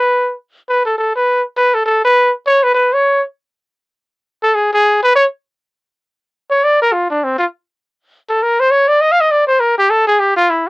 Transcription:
Already playing: B4
0.69 B4
0.85 A4
0.98 A4
1.16 B4
1.57 B4
1.74 A4
1.86 A4
2.04 B4
2.46 C#5
2.63 B4
2.74 B4
2.93 C#5
4.43 A4
4.54 G#4
4.73 G#4
5.03 B4
5.15 C#5
6.51 C#5
6.64 D5
6.82 A#4
6.92 F4
7.10 D4
7.24 C4
7.39 F4
8.29 A4
8.43 A#4
8.60 C5
8.71 C#5
8.88 D5
9.01 D#5
9.11 F5
9.20 D#5
9.31 D5
9.47 C5
9.60 A#4
9.78 G4
9.90 A4
10.07 G#4
10.20 G4
10.36 F4
10.50 E4

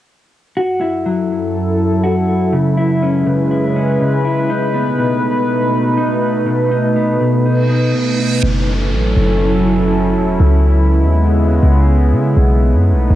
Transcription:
0.56 F#2 F#3 E4 F#4 A4
0.81 E4
1.06 F#3
2.04 F#4
2.53 C#3 G#3 B4
2.77 E4
3.03 C#4
3.26 C#3
3.51 E4
3.76 C#4
4.01 C#3
4.25 E4
4.50 B2 A3 D#4
4.74 B3
4.98 B2
5.97 D#4
6.46 B2
6.71 D#4
6.96 B3
7.20 B2
7.45 D#4, reverse cymbal
7.70 B3
7.94 B2
8.19 D#4
8.43 F#1 F#3 C#4 E4 A4, downlifter
8.92 A1
9.17 F#1
10.15 E1
10.40 C#2 C#3 G#3 B3
11.01 D#2
11.63 C#2
12.12 C#3
12.37 B1 A3 B3 D#4
12.74 F#2
12.92 B1
13.10 B1

